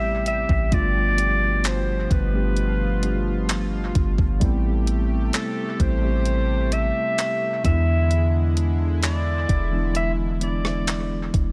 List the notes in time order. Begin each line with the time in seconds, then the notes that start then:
Already playing: A1 C3 G3 A3 B3 C4 E4 G4 E5
0.26 E5, closed hi-hat
0.49 A1, kick
0.70 G1 B2 F3 G3 A3 B3 D4 F4 D5, kick, closed hi-hat
1.18 closed hi-hat
1.64 C5, clap, closed hi-hat
2.11 G1 B4, kick, closed hi-hat
2.32 G3 A3 B3 D4 G4
2.57 F4, closed hi-hat
3.01 G3 A3 B3 D4 G4, closed hi-hat
3.49 clap, closed hi-hat
3.95 G1, kick, closed hi-hat
4.18 G1, kick
4.40 A1 C3 G3 A3 B3 C4 E4 G4, kick, closed hi-hat
4.87 closed hi-hat
5.33 A4, clap, closed hi-hat
5.78 A1 G3 A3 B3 C4 E4 C5, kick, closed hi-hat
6.01 G3 A3 C4 G4
6.25 closed hi-hat
6.72 E5, closed hi-hat
7.18 clap, closed hi-hat
7.63 E2 D3 E3 G#3 B3 D4 E4 E5, kick, closed hi-hat
8.11 closed hi-hat
8.57 closed hi-hat
9.03 D5, clap, closed hi-hat
9.49 E1, kick, closed hi-hat
9.71 E3 G#3 B3 D4 E4
9.95 E5, closed hi-hat
10.40 E3 G#3 B3 D4 E4 D5, closed hi-hat
10.65 cross-stick
10.87 clap, closed hi-hat
11.34 E1, kick, closed hi-hat